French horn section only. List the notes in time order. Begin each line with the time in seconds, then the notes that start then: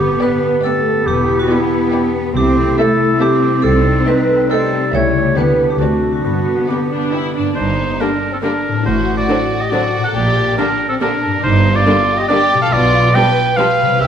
Already playing: B3 G4
2.36 A3 E4
3.64 G3 D#4
4.94 E4
5.37 D4
5.80 C4
6.25 B3